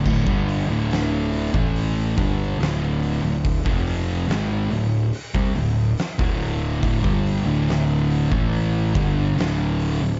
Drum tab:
CC |x---------------|----------------|----------------|
HH |--o-o-o-o-o-o-o-|o-o-o-o-o-o-o-o-|o-o-o-o-o-o-o-o-|
SD |----o-------o---|----o-------o---|----o-------o---|
BD |oo-----o--o-----|oo-------o---o--|oo-----o--o-----|